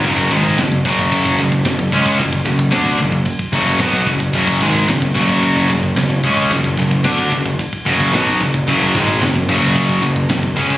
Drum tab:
RD |b---b---b---b---|b---b---b---b---|b---b---b---b---|b---b---b---b---|
SD |----o-------o---|----o-------o---|----o-------o---|----o-------o---|
BD |oooooooooooooooo|oooooooooooooooo|oooooooooooooooo|oooooooooooooooo|

RD |b---b---b---b---|
SD |----o-------o---|
BD |oooooooooooooooo|